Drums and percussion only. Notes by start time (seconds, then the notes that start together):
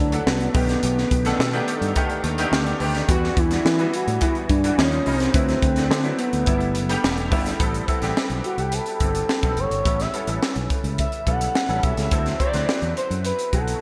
0.12 closed hi-hat
0.27 snare
0.41 closed hi-hat
0.54 kick, open hi-hat
0.69 snare, closed hi-hat
0.83 closed hi-hat
0.98 snare
1.11 kick, closed hi-hat
1.25 snare, closed hi-hat
1.40 snare
1.53 closed hi-hat
1.68 closed hi-hat
1.82 closed hi-hat
1.96 kick, closed hi-hat
2.10 closed hi-hat
2.24 closed hi-hat
2.38 closed hi-hat
2.53 snare
2.66 closed hi-hat
2.80 open hi-hat
2.95 snare, closed hi-hat
3.09 kick, closed hi-hat
3.24 snare
3.37 kick, closed hi-hat
3.51 snare, closed hi-hat
3.66 snare
3.79 closed hi-hat
3.94 closed hi-hat
4.08 closed hi-hat
4.21 kick, closed hi-hat
4.35 closed hi-hat
4.49 kick, closed hi-hat
4.64 closed hi-hat
4.79 snare
4.92 closed hi-hat
5.06 open hi-hat
5.20 snare, closed hi-hat
5.34 kick, closed hi-hat
5.49 snare, closed hi-hat
5.62 kick, closed hi-hat
5.76 snare, closed hi-hat
5.91 snare
6.04 closed hi-hat
6.19 closed hi-hat
6.33 closed hi-hat
6.46 kick, closed hi-hat
6.60 closed hi-hat
6.75 closed hi-hat
6.89 closed hi-hat
7.04 snare
7.18 closed hi-hat
7.32 kick, open hi-hat
7.46 snare, closed hi-hat
7.60 kick, closed hi-hat
7.74 closed hi-hat
7.88 kick, closed hi-hat
8.02 snare, closed hi-hat
8.17 snare
8.30 closed hi-hat
8.44 closed hi-hat
8.58 closed hi-hat
8.72 closed hi-hat
8.86 closed hi-hat
9.00 kick, closed hi-hat
9.15 closed hi-hat
9.29 snare
9.43 kick, closed hi-hat
9.57 closed hi-hat
9.71 closed hi-hat
9.85 kick, closed hi-hat
10.00 snare, closed hi-hat
10.14 closed hi-hat
10.27 closed hi-hat
10.43 snare
10.56 closed hi-hat
10.70 kick, closed hi-hat
10.84 closed hi-hat
10.98 kick, closed hi-hat
11.12 closed hi-hat
11.27 kick, closed hi-hat
11.41 closed hi-hat
11.55 snare
11.69 closed hi-hat
11.83 kick, closed hi-hat
11.97 snare, closed hi-hat
12.11 kick, closed hi-hat
12.26 snare, closed hi-hat
12.40 kick, closed hi-hat
12.53 snare, closed hi-hat
12.69 snare
12.82 closed hi-hat
12.97 closed hi-hat
13.11 closed hi-hat
13.25 closed hi-hat
13.39 closed hi-hat
13.53 kick, closed hi-hat
13.68 closed hi-hat